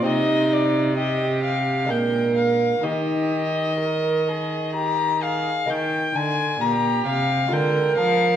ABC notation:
X:1
M:3/4
L:1/8
Q:1/4=65
K:Eb
V:1 name="Violin"
e d e f g f | e4 b f | g a b f g f |]
V:2 name="Violin"
E2 G2 B2 | G2 B A G A | z2 G2 B2 |]
V:3 name="Lute"
[CG]4 [A,DB]2 | [EB]6 | [EB]4 [A,FB]2 |]
V:4 name="Lute" clef=bass
C,4 B,,2 | E,6 | E, D, B,, C, D, F, |]
V:5 name="Cello" clef=bass
C,4 B,,2 | E,6 | E, D, B,, C, D, F, |]